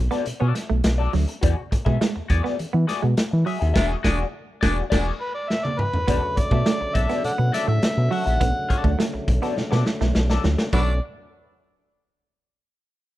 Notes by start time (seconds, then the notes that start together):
0.11 B3 F#4 A4 D5, snare, closed hi-hat
0.26 B2, muted clean electric guitar stroke, closed hi-hat
0.40 B2 B3 F#4 A4 D5
0.55 muted clean electric guitar stroke, snare, closed hi-hat
0.69 B1 A3, muted clean electric guitar stroke
0.84 B1, muted clean electric guitar stroke, snare, closed hi-hat
0.98 F#4 A4 D5
1.13 D2 F#3, muted clean electric guitar stroke, snare, open hi-hat
1.28 muted clean electric guitar stroke, closed hi-hat
1.41 E2 E3 F#4 G#4 D5, kick, closed hi-hat
1.56 muted clean electric guitar stroke
1.71 muted clean electric guitar stroke, kick, closed hi-hat
1.85 B2 G#3 F#4 G#4 E5, kick
2.00 G#3, muted clean electric guitar stroke, snare, closed hi-hat
2.14 E2, muted clean electric guitar stroke
2.28 E2 F#4 G#4 D5, kick, closed hi-hat
2.43 B3 F#4 G#4 D5, snare
2.58 E3, muted clean electric guitar stroke, closed hi-hat
2.73 E3 B3, muted clean electric guitar stroke
2.87 F#4 G#4 D5, muted clean electric guitar stroke, snare, closed hi-hat
3.02 B2 G#3, muted clean electric guitar stroke
3.17 muted clean electric guitar stroke, snare, closed hi-hat
3.31 E3, muted clean electric guitar stroke
3.45 F#3 F#4 G#4 E5, open hi-hat
3.60 D#2 F#4 G#4 E5, closed hi-hat
3.74 E1 D4 F#4 G#4 E5, kick, snare, crash
4.03 E1 D4 F#4 G#4 D5, kick, snare
4.61 E1 D4 F#4 G#4 D5, kick, snare
4.90 E1 D4 F#4 G#4 D5, kick, snare, crash
5.21 B4
5.35 D5
5.49 E5, snare
5.64 D5, high tom
5.78 B4, mid tom
5.94 floor tom
6.08 B1 C#3 D3 F#3 A3 B3 F#4 A4 D5, kick, closed hi-hat
6.23 muted clean electric guitar stroke
6.37 D5, muted clean electric guitar stroke, kick, closed hi-hat
6.51 B2 A3 F#4 A4 E5, kick
6.66 A3, muted clean electric guitar stroke, snare, closed hi-hat
6.80 B1, muted clean electric guitar stroke
6.94 B1 F#4 A4 D5 E5, kick, closed hi-hat
7.09 B3 F#4 A4 D5, snare, closed hi-hat
7.24 B2 A4 D5 F#5, muted clean electric guitar stroke, closed hi-hat
7.38 B2 B3, muted clean electric guitar stroke
7.52 F#4 A4 D5 E5, muted clean electric guitar stroke, snare, closed hi-hat
7.67 A2 A3 E5, muted clean electric guitar stroke
7.82 muted clean electric guitar stroke, snare, closed hi-hat
7.97 B2, muted clean electric guitar stroke
8.11 F#3 F#4 A4 E5 F#5, open hi-hat
8.26 A#1 F#4 A4 E5, closed hi-hat
8.41 B1 B3, kick, closed hi-hat
8.69 F#4 A4 D5, muted clean electric guitar stroke, kick, closed hi-hat
8.84 D2 A3, kick
8.98 A3, muted clean electric guitar stroke, snare, closed hi-hat
9.13 B1, muted clean electric guitar stroke
9.28 B1, kick, closed hi-hat
9.42 B3 F#4 A4 D5, snare, closed hi-hat
9.57 B2, muted clean electric guitar stroke, snare
9.71 B2 B3 F#4 A4 D5, snare
9.86 muted clean electric guitar stroke, snare
10.01 B1 A3, muted clean electric guitar stroke, snare
10.15 B1, muted clean electric guitar stroke, snare
10.30 F#4 A4 D5, snare
10.44 D2 F#3, muted clean electric guitar stroke, snare
10.58 muted clean electric guitar stroke, snare
10.73 B1 D3 F#3 A3 C#4 D4 F#4 A4 B4 D5, kick, crash